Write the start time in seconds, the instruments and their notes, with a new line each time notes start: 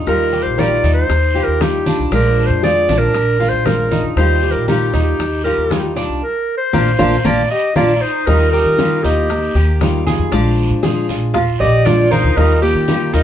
Already playing: cuban tres D#4
0.07 upright bass D#2, nylon-string guitar D#3 G3 D#4 F4, clarinet A#4, high bongo, high conga, long guiro, claves, maracas
0.33 cuban tres G4, high conga, maracas
0.43 upright bass A#1, clarinet C5
0.58 nylon-string guitar D#3 G3 D#4 F4, cuban tres A#4, clarinet D5, high bongo, high conga, short guiro, claves, maracas
0.83 upright bass D#2, cuban tres D#4, high conga, short guiro, maracas
0.94 clarinet C5
1.09 upright bass D#2, muted nylon-string guitar stroke, high bongo, high conga, long guiro, maracas
1.34 nylon-string guitar G3 D#4 F4, cuban tres G4, high conga, claves, maracas
1.44 upright bass D#2, clarinet A#4
1.60 nylon-string guitar D#3 G3 D#4 F4, clarinet G4, high bongo, low bongo, high conga, short guiro, maracas
1.86 nylon-string guitar G3 D#4 F4, cuban tres D4, high conga, short guiro, maracas
1.99 upright bass C2
2.12 upright bass A#1, nylon-string guitar F3 G#3 D4 F4, cuban tres D4, clarinet A#4, high bongo, high conga, long guiro, claves, maracas
2.37 high bongo, high conga, maracas
2.47 upright bass F2, clarinet C5
2.63 nylon-string guitar F3 G#3 D4 F4, cuban tres G#4, clarinet D5, high bongo, high conga, short guiro, maracas
2.88 upright bass A#1, cuban tres D4, high bongo, high conga, short guiro, maracas
2.98 clarinet A#4
3.13 upright bass A#1, muted nylon-string guitar stroke, high bongo, high conga, long guiro, claves, maracas
3.40 nylon-string guitar G#3 D4 F4, cuban tres F4, high bongo, high conga, maracas
3.50 upright bass A#1, clarinet C5
3.65 nylon-string guitar F3 G#3 D4 F4, clarinet A#4, high bongo, low bongo, high conga, short guiro, maracas
3.91 nylon-string guitar G#3 D4 F4, cuban tres D#4, high conga, short guiro, maracas
4.03 upright bass F2
4.16 upright bass D#2, nylon-string guitar D#3 G3 D#4 F4, clarinet C5, high bongo, high conga, long guiro, claves, maracas
4.43 cuban tres G4, high conga, maracas
4.52 upright bass A#1, clarinet A#4
4.68 nylon-string guitar D#3 G3 D#4 F4, clarinet G4, cuban tres A#4, high bongo, high conga, short guiro, claves, maracas
4.94 upright bass D#2, cuban tres D#4, high conga, short guiro, maracas
5.03 clarinet G4
5.19 upright bass D#2, muted nylon-string guitar stroke, high bongo, high conga, long guiro, maracas
5.44 nylon-string guitar G3 D#4 F4, cuban tres G4, clarinet A#4, high conga, claves, maracas
5.57 upright bass D#2
5.70 nylon-string guitar D#3 G3 D#4 F4, high bongo, low bongo, high conga, short guiro, maracas
5.96 nylon-string guitar G3 D#4 F4, cuban tres D4, short guiro, maracas
6.09 upright bass C2
6.22 clarinet A#4
6.58 clarinet C5
6.73 upright bass A#1, nylon-string guitar A#3 D4 F4, cuban tres A#3 D4 F4, low bongo, high conga, long guiro, claves, maracas
6.99 upright bass A#1, nylon-string guitar A#3 D4 F4, cuban tres A#3 D4 F4, low bongo, high conga, long guiro, claves, maracas
7.24 upright bass A#1, nylon-string guitar A#3 D4 F4, cuban tres A#3 D4 F4, clarinet D5, low bongo, high conga, long guiro, claves, maracas
7.51 viola G4, clarinet D#5
7.76 upright bass A#1, cuban tres A#3 D4 F4, nylon-string guitar A#3 D4 F4, viola F4, clarinet D5, low bongo, high conga, long guiro, claves, maracas
8.01 viola D#4, clarinet C5
8.26 upright bass D#2, nylon-string guitar D#3 G3 D#4 F4, viola D#4, clarinet A#4, cuban tres D#5, high bongo, high conga, long guiro, claves, maracas
8.51 viola D#4, cuban tres G4, clarinet A#4, high bongo, high conga, maracas
8.65 upright bass D#3
8.77 nylon-string guitar D#3 G3 D#4 F4, high bongo, high conga, short guiro, claves, maracas
9.04 upright bass D#2, nylon-string guitar G3 D#4 F4, viola A#3, cuban tres D#4, clarinet G4, high bongo, short guiro, maracas
9.29 muted nylon-string guitar stroke, high bongo, high conga, long guiro, maracas
9.55 upright bass D#2, cuban tres G4, high bongo, high conga, claves, maracas
9.81 nylon-string guitar D#3 G3 D#4 F4, high bongo, low bongo, high conga, short guiro, maracas
10.06 nylon-string guitar G3 D#4 F4, cuban tres G#4, high conga, short guiro, maracas
10.19 upright bass F2
10.32 upright bass A#1, nylon-string guitar F3 G#3 D4 F4, cuban tres D4, high bongo, high conga, long guiro, claves, maracas
10.58 high conga, maracas
10.71 upright bass A#2
10.83 nylon-string guitar F3 G#3 D4 F4, cuban tres G#4, high bongo, high conga, short guiro, maracas
11.09 upright bass A#1, nylon-string guitar G#3 D4 F4, high bongo, high conga, short guiro, maracas
11.34 cuban tres F4, muted nylon-string guitar stroke, high bongo, high conga, low conga, long guiro, claves, maracas
11.60 upright bass A#1, viola G4, cuban tres D5, clarinet D#5, high bongo, high conga, low conga, maracas
11.85 nylon-string guitar F3 G#3 D4 F4, viola F4, clarinet D5, high bongo, low bongo, high conga, short guiro, maracas
12.11 nylon-string guitar G#3 D4 F4, viola D#4, cuban tres A#4, clarinet C5, high bongo, high conga, short guiro, maracas
12.24 upright bass D2
12.37 upright bass D#2, nylon-string guitar D#3 G3 D#4 F4, viola D#4, clarinet A#4, cuban tres D#5, high bongo, high conga, long guiro, claves, maracas
12.62 viola A#3, clarinet G4, cuban tres G4, high bongo, high conga, maracas
12.75 upright bass D#3
12.87 nylon-string guitar D#3 G3 D#4 F4, high bongo, high conga, short guiro, claves, maracas
13.13 upright bass D#2, nylon-string guitar G3 D#4 F4, cuban tres D#4, viola D#4, clarinet A#4, high bongo, short guiro, maracas